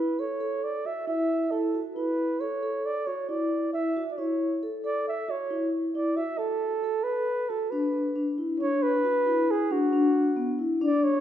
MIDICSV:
0, 0, Header, 1, 3, 480
1, 0, Start_track
1, 0, Key_signature, 2, "minor"
1, 0, Tempo, 443131
1, 2115, Time_signature, 5, 2, 24, 8
1, 12136, End_track
2, 0, Start_track
2, 0, Title_t, "Flugelhorn"
2, 0, Program_c, 0, 56
2, 0, Note_on_c, 0, 71, 72
2, 213, Note_on_c, 0, 73, 80
2, 229, Note_off_c, 0, 71, 0
2, 695, Note_on_c, 0, 74, 72
2, 711, Note_off_c, 0, 73, 0
2, 935, Note_on_c, 0, 76, 78
2, 951, Note_off_c, 0, 74, 0
2, 1162, Note_off_c, 0, 76, 0
2, 1169, Note_on_c, 0, 76, 81
2, 1639, Note_on_c, 0, 69, 68
2, 1655, Note_off_c, 0, 76, 0
2, 1997, Note_off_c, 0, 69, 0
2, 2123, Note_on_c, 0, 71, 72
2, 2604, Note_on_c, 0, 73, 71
2, 2620, Note_off_c, 0, 71, 0
2, 3093, Note_on_c, 0, 74, 73
2, 3110, Note_off_c, 0, 73, 0
2, 3322, Note_on_c, 0, 73, 65
2, 3338, Note_off_c, 0, 74, 0
2, 3559, Note_off_c, 0, 73, 0
2, 3567, Note_on_c, 0, 74, 69
2, 4009, Note_off_c, 0, 74, 0
2, 4050, Note_on_c, 0, 76, 81
2, 4379, Note_off_c, 0, 76, 0
2, 4457, Note_on_c, 0, 74, 52
2, 4529, Note_on_c, 0, 73, 63
2, 4545, Note_off_c, 0, 74, 0
2, 5004, Note_off_c, 0, 73, 0
2, 5259, Note_on_c, 0, 74, 82
2, 5473, Note_off_c, 0, 74, 0
2, 5506, Note_on_c, 0, 76, 79
2, 5743, Note_on_c, 0, 73, 73
2, 5759, Note_off_c, 0, 76, 0
2, 6211, Note_off_c, 0, 73, 0
2, 6447, Note_on_c, 0, 74, 73
2, 6678, Note_on_c, 0, 76, 77
2, 6694, Note_off_c, 0, 74, 0
2, 6912, Note_on_c, 0, 69, 81
2, 6928, Note_off_c, 0, 76, 0
2, 7622, Note_on_c, 0, 71, 86
2, 7638, Note_off_c, 0, 69, 0
2, 8117, Note_on_c, 0, 69, 70
2, 8133, Note_off_c, 0, 71, 0
2, 8347, Note_on_c, 0, 71, 61
2, 8364, Note_off_c, 0, 69, 0
2, 9073, Note_off_c, 0, 71, 0
2, 9319, Note_on_c, 0, 73, 87
2, 9563, Note_on_c, 0, 71, 101
2, 9579, Note_off_c, 0, 73, 0
2, 10300, Note_on_c, 0, 68, 82
2, 10317, Note_off_c, 0, 71, 0
2, 10527, Note_on_c, 0, 66, 70
2, 10543, Note_off_c, 0, 68, 0
2, 11480, Note_off_c, 0, 66, 0
2, 11725, Note_on_c, 0, 74, 86
2, 11957, Note_on_c, 0, 73, 90
2, 11973, Note_off_c, 0, 74, 0
2, 12136, Note_off_c, 0, 73, 0
2, 12136, End_track
3, 0, Start_track
3, 0, Title_t, "Vibraphone"
3, 0, Program_c, 1, 11
3, 0, Note_on_c, 1, 64, 70
3, 127, Note_off_c, 1, 64, 0
3, 202, Note_on_c, 1, 69, 53
3, 404, Note_off_c, 1, 69, 0
3, 438, Note_on_c, 1, 69, 59
3, 847, Note_off_c, 1, 69, 0
3, 924, Note_on_c, 1, 66, 52
3, 1125, Note_off_c, 1, 66, 0
3, 1164, Note_on_c, 1, 64, 67
3, 1570, Note_off_c, 1, 64, 0
3, 1649, Note_on_c, 1, 64, 68
3, 1848, Note_off_c, 1, 64, 0
3, 1891, Note_on_c, 1, 66, 63
3, 2089, Note_off_c, 1, 66, 0
3, 2125, Note_on_c, 1, 64, 63
3, 2531, Note_off_c, 1, 64, 0
3, 2606, Note_on_c, 1, 69, 58
3, 2807, Note_off_c, 1, 69, 0
3, 2845, Note_on_c, 1, 69, 64
3, 3252, Note_off_c, 1, 69, 0
3, 3325, Note_on_c, 1, 66, 60
3, 3527, Note_off_c, 1, 66, 0
3, 3563, Note_on_c, 1, 64, 65
3, 3970, Note_off_c, 1, 64, 0
3, 4051, Note_on_c, 1, 64, 61
3, 4250, Note_off_c, 1, 64, 0
3, 4294, Note_on_c, 1, 66, 67
3, 4492, Note_off_c, 1, 66, 0
3, 4528, Note_on_c, 1, 64, 69
3, 4934, Note_off_c, 1, 64, 0
3, 5014, Note_on_c, 1, 69, 62
3, 5212, Note_off_c, 1, 69, 0
3, 5247, Note_on_c, 1, 69, 62
3, 5654, Note_off_c, 1, 69, 0
3, 5724, Note_on_c, 1, 66, 60
3, 5927, Note_off_c, 1, 66, 0
3, 5963, Note_on_c, 1, 64, 67
3, 6371, Note_off_c, 1, 64, 0
3, 6445, Note_on_c, 1, 64, 66
3, 6647, Note_off_c, 1, 64, 0
3, 6919, Note_on_c, 1, 66, 63
3, 7329, Note_off_c, 1, 66, 0
3, 7404, Note_on_c, 1, 69, 66
3, 7607, Note_off_c, 1, 69, 0
3, 7640, Note_on_c, 1, 69, 55
3, 8050, Note_off_c, 1, 69, 0
3, 8123, Note_on_c, 1, 66, 60
3, 8327, Note_off_c, 1, 66, 0
3, 8364, Note_on_c, 1, 62, 69
3, 8772, Note_off_c, 1, 62, 0
3, 8836, Note_on_c, 1, 62, 65
3, 9042, Note_off_c, 1, 62, 0
3, 9077, Note_on_c, 1, 64, 59
3, 9283, Note_off_c, 1, 64, 0
3, 9320, Note_on_c, 1, 62, 74
3, 9729, Note_off_c, 1, 62, 0
3, 9798, Note_on_c, 1, 66, 63
3, 10003, Note_off_c, 1, 66, 0
3, 10038, Note_on_c, 1, 64, 63
3, 10447, Note_off_c, 1, 64, 0
3, 10515, Note_on_c, 1, 62, 69
3, 10721, Note_off_c, 1, 62, 0
3, 10753, Note_on_c, 1, 62, 81
3, 11164, Note_off_c, 1, 62, 0
3, 11226, Note_on_c, 1, 59, 69
3, 11435, Note_off_c, 1, 59, 0
3, 11470, Note_on_c, 1, 64, 67
3, 11677, Note_off_c, 1, 64, 0
3, 11715, Note_on_c, 1, 62, 78
3, 12124, Note_off_c, 1, 62, 0
3, 12136, End_track
0, 0, End_of_file